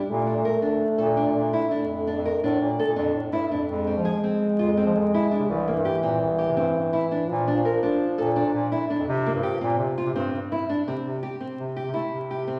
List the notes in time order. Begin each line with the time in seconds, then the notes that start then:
Already playing: G3
0.09 A#2 A3
0.27 D4
0.36 A#2
0.45 A#4
0.62 D4
0.98 A#2 A4
1.17 D4
1.26 A#2
1.35 A#2
1.53 E4
1.71 D4
1.81 F2
2.07 D4
2.17 F2
2.25 A#4
2.43 A2 D4
2.61 A#2
2.79 A4
2.88 A#2
2.96 F2 D4
3.14 A2
3.32 G2 E4
3.51 F2 D4
3.69 F2 G#3
3.87 C4
3.96 F3
4.05 G#4
4.24 C4
4.59 F2 F4
4.77 C4
4.85 F3
4.95 F2
5.14 E4
5.31 D4
5.39 C3
5.48 C2 E3
5.68 A#3
5.76 G2
5.85 G4
6.02 A#2 C4
6.21 C2
6.38 G4
6.48 C3
6.57 G2 C4
6.75 G2
6.93 E4
7.11 D4
7.28 A#2 F3
7.48 D4
7.56 A#2
7.65 A#4
7.83 D4
8.18 A#2 A4
8.36 D4
8.45 A#2
8.54 A#2
8.72 E4
8.90 D4
8.99 F2
9.08 C3 F3
9.26 A#3
9.34 G2
9.43 G4
9.61 A#2 C4
9.78 C3
9.98 F4
10.06 C3
10.14 G2 C4
10.32 G2
10.52 E4
10.69 D4
10.87 C3 C4
11.05 C3
11.23 G4
11.40 C4
11.59 C3
11.76 G4
11.86 C3
11.94 A3 E4
12.12 C3
12.31 G4
12.47 C4